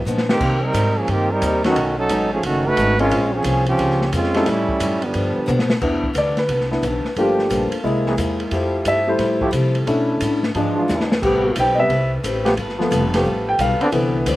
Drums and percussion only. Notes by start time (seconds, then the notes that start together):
0.06 hi-hat pedal
0.18 snare
0.29 snare
0.40 kick, crash
0.74 kick, hi-hat pedal, ride
1.08 kick, ride
1.42 kick, hi-hat pedal, ride
1.64 snare, ride
1.76 kick, ride
2.09 kick, hi-hat pedal, ride
2.43 kick, ride
2.77 kick, hi-hat pedal, ride
2.99 ride
3.11 kick, ride
3.44 kick, hi-hat pedal, ride
3.66 ride
3.79 kick, ride
3.90 snare
4.02 snare
4.13 kick, hi-hat pedal, ride
4.24 snare
4.34 snare, ride
4.46 kick, snare, ride
4.69 kick
4.80 kick, hi-hat pedal, ride
5.02 ride
5.14 kick, ride
5.47 hi-hat pedal, mid tom
5.59 snare
5.70 snare
5.81 kick, crash
6.03 kick
6.15 kick, hi-hat pedal, ride
6.37 snare, ride
6.49 kick, ride
6.61 snare
6.72 snare
6.83 kick, hi-hat pedal, ride
7.05 snare
7.16 kick, ride
7.39 snare
7.50 kick, hi-hat pedal, ride
7.72 ride
7.84 kick
8.06 snare
8.18 kick, hi-hat pedal, ride
8.40 ride
8.51 kick, ride
8.85 kick, hi-hat pedal, ride
9.19 kick, snare, ride
9.41 kick
9.53 kick, hi-hat pedal, ride
9.75 ride
9.87 kick, ride
10.21 kick, hi-hat pedal, ride
10.43 snare
10.55 kick, ride
10.89 snare, hi-hat pedal
11.00 snare
11.12 snare
11.23 kick, crash
11.56 kick, hi-hat pedal, ride
11.90 kick, ride
12.24 kick, hi-hat pedal, ride
12.46 snare, ride
12.57 kick, ride
12.69 snare
12.81 snare
12.92 kick, hi-hat pedal, ride
13.14 snare, ride
13.25 kick
13.59 kick, hi-hat pedal, ride
13.81 ride
13.92 kick, ride
14.26 kick, hi-hat pedal, ride